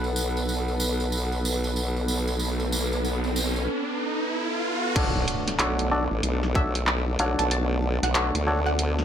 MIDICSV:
0, 0, Header, 1, 8, 480
1, 0, Start_track
1, 0, Key_signature, 2, "minor"
1, 0, Tempo, 638298
1, 1808, Time_signature, 4, 2, 24, 8
1, 6803, End_track
2, 0, Start_track
2, 0, Title_t, "Synth pluck"
2, 0, Program_c, 0, 84
2, 4929, Note_on_c, 0, 76, 97
2, 5390, Note_off_c, 0, 76, 0
2, 5412, Note_on_c, 0, 78, 89
2, 5530, Note_off_c, 0, 78, 0
2, 5556, Note_on_c, 0, 81, 96
2, 5615, Note_off_c, 0, 81, 0
2, 5650, Note_on_c, 0, 81, 84
2, 5745, Note_off_c, 0, 81, 0
2, 6042, Note_on_c, 0, 78, 84
2, 6098, Note_off_c, 0, 78, 0
2, 6133, Note_on_c, 0, 78, 81
2, 6226, Note_off_c, 0, 78, 0
2, 6515, Note_on_c, 0, 78, 87
2, 6803, Note_off_c, 0, 78, 0
2, 6803, End_track
3, 0, Start_track
3, 0, Title_t, "Clav"
3, 0, Program_c, 1, 7
3, 3728, Note_on_c, 1, 73, 103
3, 3729, Note_on_c, 1, 66, 90
3, 3729, Note_on_c, 1, 69, 87
3, 3730, Note_on_c, 1, 62, 93
3, 4172, Note_off_c, 1, 62, 0
3, 4172, Note_off_c, 1, 66, 0
3, 4172, Note_off_c, 1, 69, 0
3, 4172, Note_off_c, 1, 73, 0
3, 4207, Note_on_c, 1, 66, 79
3, 4207, Note_on_c, 1, 69, 80
3, 4208, Note_on_c, 1, 62, 86
3, 4208, Note_on_c, 1, 73, 90
3, 4426, Note_off_c, 1, 62, 0
3, 4426, Note_off_c, 1, 66, 0
3, 4426, Note_off_c, 1, 69, 0
3, 4426, Note_off_c, 1, 73, 0
3, 4447, Note_on_c, 1, 62, 98
3, 4448, Note_on_c, 1, 66, 88
3, 4448, Note_on_c, 1, 69, 88
3, 4449, Note_on_c, 1, 74, 107
3, 4542, Note_off_c, 1, 62, 0
3, 4543, Note_off_c, 1, 66, 0
3, 4543, Note_off_c, 1, 69, 0
3, 4543, Note_off_c, 1, 74, 0
3, 4929, Note_on_c, 1, 62, 93
3, 4929, Note_on_c, 1, 66, 87
3, 4929, Note_on_c, 1, 73, 101
3, 4930, Note_on_c, 1, 69, 88
3, 5079, Note_off_c, 1, 62, 0
3, 5079, Note_off_c, 1, 66, 0
3, 5080, Note_off_c, 1, 69, 0
3, 5080, Note_off_c, 1, 73, 0
3, 5411, Note_on_c, 1, 62, 100
3, 5412, Note_on_c, 1, 66, 86
3, 5412, Note_on_c, 1, 69, 87
3, 5412, Note_on_c, 1, 73, 107
3, 6108, Note_off_c, 1, 62, 0
3, 6108, Note_off_c, 1, 66, 0
3, 6108, Note_off_c, 1, 69, 0
3, 6108, Note_off_c, 1, 73, 0
3, 6128, Note_on_c, 1, 66, 73
3, 6129, Note_on_c, 1, 69, 78
3, 6129, Note_on_c, 1, 73, 94
3, 6130, Note_on_c, 1, 62, 82
3, 6279, Note_off_c, 1, 66, 0
3, 6279, Note_off_c, 1, 69, 0
3, 6279, Note_off_c, 1, 73, 0
3, 6280, Note_off_c, 1, 62, 0
3, 6369, Note_on_c, 1, 62, 88
3, 6370, Note_on_c, 1, 66, 78
3, 6370, Note_on_c, 1, 69, 78
3, 6370, Note_on_c, 1, 73, 96
3, 6463, Note_off_c, 1, 62, 0
3, 6464, Note_off_c, 1, 66, 0
3, 6464, Note_off_c, 1, 69, 0
3, 6464, Note_off_c, 1, 73, 0
3, 6803, End_track
4, 0, Start_track
4, 0, Title_t, "Analog synth pad"
4, 0, Program_c, 2, 89
4, 0, Note_on_c, 2, 59, 82
4, 0, Note_on_c, 2, 69, 71
4, 0, Note_on_c, 2, 71, 73
4, 0, Note_on_c, 2, 78, 90
4, 3696, Note_off_c, 2, 71, 0
4, 3698, Note_off_c, 2, 69, 0
4, 3699, Note_off_c, 2, 59, 0
4, 3723, Note_on_c, 2, 59, 83
4, 3724, Note_on_c, 2, 62, 93
4, 3726, Note_off_c, 2, 78, 0
4, 3727, Note_on_c, 2, 57, 92
4, 6803, Note_off_c, 2, 57, 0
4, 6803, Note_off_c, 2, 59, 0
4, 6803, Note_off_c, 2, 62, 0
4, 6803, End_track
5, 0, Start_track
5, 0, Title_t, "Wobble bass"
5, 0, Program_c, 3, 39
5, 0, Note_on_c, 3, 35, 81
5, 2767, Note_off_c, 3, 35, 0
5, 3728, Note_on_c, 3, 35, 100
5, 3853, Note_off_c, 3, 35, 0
5, 3876, Note_on_c, 3, 35, 98
5, 3953, Note_off_c, 3, 35, 0
5, 4205, Note_on_c, 3, 35, 93
5, 4572, Note_off_c, 3, 35, 0
5, 4596, Note_on_c, 3, 33, 92
5, 4673, Note_off_c, 3, 33, 0
5, 4685, Note_on_c, 3, 35, 101
5, 5392, Note_off_c, 3, 35, 0
5, 5408, Note_on_c, 3, 35, 99
5, 5534, Note_off_c, 3, 35, 0
5, 5559, Note_on_c, 3, 35, 97
5, 6014, Note_off_c, 3, 35, 0
5, 6037, Note_on_c, 3, 35, 103
5, 6253, Note_off_c, 3, 35, 0
5, 6278, Note_on_c, 3, 38, 92
5, 6803, Note_off_c, 3, 38, 0
5, 6803, End_track
6, 0, Start_track
6, 0, Title_t, "Impact"
6, 0, Program_c, 4, 103
6, 3728, Note_on_c, 4, 60, 78
6, 5648, Note_off_c, 4, 60, 0
6, 6803, End_track
7, 0, Start_track
7, 0, Title_t, "Riser"
7, 0, Program_c, 5, 103
7, 0, Note_on_c, 5, 60, 69
7, 3727, Note_off_c, 5, 60, 0
7, 6803, End_track
8, 0, Start_track
8, 0, Title_t, "Drums"
8, 30, Note_on_c, 9, 54, 23
8, 105, Note_off_c, 9, 54, 0
8, 120, Note_on_c, 9, 54, 87
8, 195, Note_off_c, 9, 54, 0
8, 277, Note_on_c, 9, 54, 34
8, 352, Note_off_c, 9, 54, 0
8, 366, Note_on_c, 9, 54, 47
8, 442, Note_off_c, 9, 54, 0
8, 513, Note_on_c, 9, 54, 22
8, 588, Note_off_c, 9, 54, 0
8, 600, Note_on_c, 9, 54, 81
8, 675, Note_off_c, 9, 54, 0
8, 751, Note_on_c, 9, 54, 32
8, 826, Note_off_c, 9, 54, 0
8, 843, Note_on_c, 9, 54, 51
8, 918, Note_off_c, 9, 54, 0
8, 994, Note_on_c, 9, 54, 23
8, 1069, Note_off_c, 9, 54, 0
8, 1091, Note_on_c, 9, 54, 80
8, 1166, Note_off_c, 9, 54, 0
8, 1233, Note_on_c, 9, 54, 35
8, 1308, Note_off_c, 9, 54, 0
8, 1324, Note_on_c, 9, 54, 46
8, 1399, Note_off_c, 9, 54, 0
8, 1477, Note_on_c, 9, 54, 21
8, 1553, Note_off_c, 9, 54, 0
8, 1566, Note_on_c, 9, 54, 75
8, 1641, Note_off_c, 9, 54, 0
8, 1711, Note_on_c, 9, 54, 33
8, 1786, Note_off_c, 9, 54, 0
8, 1800, Note_on_c, 9, 54, 47
8, 1875, Note_off_c, 9, 54, 0
8, 1952, Note_on_c, 9, 54, 24
8, 2027, Note_off_c, 9, 54, 0
8, 2049, Note_on_c, 9, 54, 78
8, 2124, Note_off_c, 9, 54, 0
8, 2201, Note_on_c, 9, 54, 35
8, 2276, Note_off_c, 9, 54, 0
8, 2290, Note_on_c, 9, 54, 53
8, 2365, Note_off_c, 9, 54, 0
8, 2435, Note_on_c, 9, 54, 22
8, 2510, Note_off_c, 9, 54, 0
8, 2527, Note_on_c, 9, 54, 74
8, 2602, Note_off_c, 9, 54, 0
8, 2677, Note_on_c, 9, 54, 35
8, 2753, Note_off_c, 9, 54, 0
8, 3728, Note_on_c, 9, 36, 118
8, 3729, Note_on_c, 9, 42, 67
8, 3729, Note_on_c, 9, 49, 104
8, 3803, Note_off_c, 9, 36, 0
8, 3804, Note_off_c, 9, 42, 0
8, 3804, Note_off_c, 9, 49, 0
8, 3968, Note_on_c, 9, 42, 70
8, 4043, Note_off_c, 9, 42, 0
8, 4118, Note_on_c, 9, 38, 42
8, 4118, Note_on_c, 9, 42, 54
8, 4193, Note_off_c, 9, 38, 0
8, 4193, Note_off_c, 9, 42, 0
8, 4207, Note_on_c, 9, 39, 122
8, 4207, Note_on_c, 9, 42, 73
8, 4282, Note_off_c, 9, 39, 0
8, 4282, Note_off_c, 9, 42, 0
8, 4355, Note_on_c, 9, 42, 53
8, 4431, Note_off_c, 9, 42, 0
8, 4686, Note_on_c, 9, 42, 66
8, 4762, Note_off_c, 9, 42, 0
8, 4836, Note_on_c, 9, 38, 41
8, 4911, Note_off_c, 9, 38, 0
8, 4927, Note_on_c, 9, 42, 37
8, 4928, Note_on_c, 9, 36, 101
8, 5002, Note_off_c, 9, 42, 0
8, 5003, Note_off_c, 9, 36, 0
8, 5077, Note_on_c, 9, 42, 54
8, 5153, Note_off_c, 9, 42, 0
8, 5167, Note_on_c, 9, 39, 112
8, 5242, Note_off_c, 9, 39, 0
8, 5407, Note_on_c, 9, 42, 63
8, 5482, Note_off_c, 9, 42, 0
8, 5557, Note_on_c, 9, 42, 58
8, 5632, Note_off_c, 9, 42, 0
8, 5648, Note_on_c, 9, 42, 69
8, 5724, Note_off_c, 9, 42, 0
8, 6040, Note_on_c, 9, 38, 41
8, 6040, Note_on_c, 9, 42, 53
8, 6115, Note_off_c, 9, 38, 0
8, 6115, Note_off_c, 9, 42, 0
8, 6129, Note_on_c, 9, 39, 127
8, 6129, Note_on_c, 9, 42, 70
8, 6204, Note_off_c, 9, 39, 0
8, 6204, Note_off_c, 9, 42, 0
8, 6279, Note_on_c, 9, 42, 53
8, 6355, Note_off_c, 9, 42, 0
8, 6609, Note_on_c, 9, 42, 72
8, 6685, Note_off_c, 9, 42, 0
8, 6758, Note_on_c, 9, 38, 40
8, 6803, Note_off_c, 9, 38, 0
8, 6803, End_track
0, 0, End_of_file